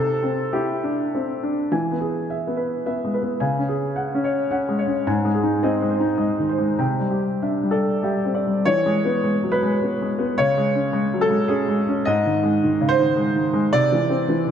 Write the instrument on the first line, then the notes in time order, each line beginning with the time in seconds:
grand piano
Already playing: C3 A4
0.23 C4
0.53 E4 G4
0.83 D4
1.15 C4
1.43 D4
1.72 E3 G#5
1.91 B3
2.00 G#4
2.30 E5
2.47 B3
2.57 B4
2.86 B3 E5
3.04 G#3
3.14 B4
3.22 B3
3.40 C#3 G#5
3.59 C#4
3.68 G#4
3.96 F#5
4.15 C#4
4.24 C#5
4.51 C#4 F#5
4.69 G#3
4.79 C#5
4.88 C#4
5.07 G#2 G#5
5.25 G#3
5.34 G#4
5.43 D#4
5.63 C4 D#5
5.82 G#3
5.90 C5
6.00 D#4
6.17 G#3 D#5
6.39 D#3
6.49 C5
6.58 G#3
6.79 C3 G5
6.99 G3
7.11 G4
7.42 D4 E5
7.63 G3
7.71 A4 D5
8.03 G3 G4 E5
8.25 C4
8.35 D5
8.47 G3
8.65 E3 C#5
8.86 G#3
9.05 B3
9.24 G#3
9.43 F#3
9.52 B4
9.63 G#3
9.83 B3
10.02 G#3
10.18 B3
10.38 C#3 C#5
10.58 G#3
10.75 C#4
10.93 G#3
11.14 F#3
11.21 A4
11.30 G#3
11.48 C#4 G#4
11.69 G#3
11.88 C#4
12.05 G#2 D#5
12.26 D#3
12.43 G#3
12.64 D#3
12.81 C#3
12.89 C5
12.99 D#3
13.16 G#3
13.35 D#3
13.54 G#3
13.73 C3 D5
13.92 E3
14.10 C4
14.28 E3
14.47 D3